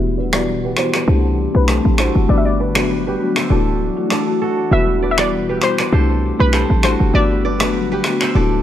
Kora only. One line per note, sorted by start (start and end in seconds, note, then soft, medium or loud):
0.00 0.18 B4 medium
0.00 0.91 E5 medium
0.17 0.35 B4 medium
0.17 0.34 D5 medium
0.34 0.64 B4 medium
0.34 0.94 D5 medium
0.64 2.06 G4 medium
0.64 0.95 B4 medium
0.95 1.14 B4 medium
0.95 2.06 D5 medium
1.08 1.69 A4 medium
1.08 1.68 C5 medium
1.68 1.99 A4 medium
1.68 2.36 C5 medium
1.99 3.14 F#4 medium
1.99 3.31 A4 medium
2.29 2.60 B4 medium
2.29 3.33 E5 medium
2.60 2.77 B4 medium
2.60 2.76 D5 medium
2.77 3.06 B4 medium
2.77 3.50 D5 medium
3.07 4.48 G4 medium
3.07 3.44 B4 medium
3.37 4.57 C5 medium
3.37 4.41 E5 medium
3.51 4.12 A4 medium
3.51 4.11 D5 medium
4.11 4.41 A4 medium
4.11 5.02 D5 medium
4.42 5.56 F#4 medium
4.42 5.73 A4 medium
4.72 5.03 B4 medium
4.72 5.75 E5 medium
5.02 5.19 B4 medium
5.02 5.18 D5 medium
5.19 5.49 B4 medium
5.19 5.79 D5 medium
5.49 6.91 G4 medium
5.49 5.80 B4 medium
5.80 5.99 B4 medium
5.80 6.90 D5 medium
5.93 6.54 A4 medium
5.93 6.53 C5 medium
6.54 6.84 A4 medium
6.54 7.22 C5 medium
6.84 7.98 F#4 medium
6.84 8.16 A4 medium
7.15 7.45 B4 medium
7.15 8.18 E5 medium
7.45 7.62 B4 medium
7.45 7.61 D5 medium
7.61 7.91 B4 medium
7.61 8.35 D5 medium
7.92 8.62 G4 medium
7.92 8.29 B4 medium
8.22 8.62 C5 medium
8.22 8.62 E5 medium
8.35 8.62 A4 medium
8.35 8.62 D5 medium